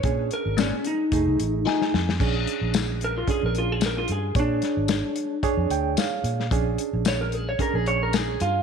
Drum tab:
CC |----------------|x---------------|----------------|----------------|
HH |x-x-x-x-x-x-----|--x-x-x-x-x-x-x-|x-x-x-x-x-x-x-x-|x-x-x-x-x-x-x-x-|
TB |----x-----------|----x-------x---|----x-------x---|----x-------x---|
SD |----o-------oooo|----o-------o---|--o-o-------o--o|----o-------o---|
BD |o-------o-------|o-------o-------|o-------o-------|o-------o-------|